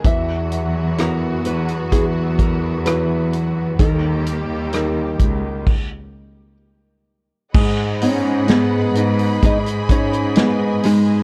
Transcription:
<<
  \new Staff \with { instrumentName = "Nylon-string guitar" } { \time 4/4 \key gis \minor \tempo 4 = 64 e''4 ais'8 b'8 gis'8 ais'8 b'4 | ais'2. r4 | r8 <cis' cis''>8 <b b'>4 <dis' dis''>8 <cis' cis''>8 <b b'>8 <gis gis'>8 | }
  \new Staff \with { instrumentName = "String section" } { \time 4/4 \key gis \minor << { b1 | ais2 r2 | fis''2 gis''2 | } \\ { <e fis fis'>1 | <dis g g'>2 r2 | <gis' dis'' b''>1 | } >> }
  \new Staff \with { instrumentName = "Felt piano" } { \time 4/4 \key gis \minor e4 <b e' fis'>4 <b e' fis'>4 <e' fis' b'>4 | dis4 <dis' g' ais'>4 r2 | gis8 dis'8 gis8 dis'8 gis8 dis'8 gis8 dis'8 | }
  \new Staff \with { instrumentName = "Cello section" } { \clef bass \time 4/4 \key gis \minor e,4. e,8 e,2 | dis,8. dis,8. cis,8 r2 | gis,4. gis,8 gis,2 | }
  \new DrumStaff \with { instrumentName = "Drums" } \drummode { \time 4/4 <hh bd>8 hh8 <hh ss>8 hh16 hh16 <hh bd>8 <hh bd>8 <hh ss>8 hh8 | <hh bd>8 hh8 <hh ss>8 <hh bd>8 <cymc bd>4 r4 | <cymc bd>8 <hho hhp>8 <hho hhp sn>8 <hho hhp>16 hho16 <hho hhp bd>16 <hho hhp>16 <hho hhp bd>16 hhp16 <hho hhp sn>8 <hho hhp sn>8 | }
>>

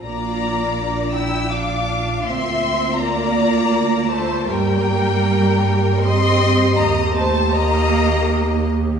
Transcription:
<<
  \new Staff \with { instrumentName = "Violin section" } { \time 3/4 \key bes \lydian \tempo 4 = 80 bes''4. e'''8 d'''4 | c'''4 bes''4. a''8 | \key g \minor g''2 c'''4 | bes''8 a''8 bes''4. r8 | }
  \new Staff \with { instrumentName = "Violin section" } { \time 3/4 \key bes \lydian d''4. g''8 f''4 | e''4 d''4. c''8 | \key g \minor bes'2 ees''4 | ees''8 c''8 ees''4. r8 | }
  \new Staff \with { instrumentName = "Viola section" } { \time 3/4 \key bes \lydian << { f'2. | f'2. | \key g \minor g'2.~ | g'2. | } \\ { d'2. | bes2.~ | bes2. | bes2. | } >> }
  \new Staff \with { instrumentName = "Cello section" } { \time 3/4 \key bes \lydian bes4. e'8 d'4 | c'4 bes4. a8 | \key g \minor g2 c'4 | bes8 a8 bes4. r8 | }
  \new Staff \with { instrumentName = "Double bass section" } { \clef bass \time 3/4 \key bes \lydian bes,,2. | d,2. | \key g \minor g,2. | ees,2. | }
>>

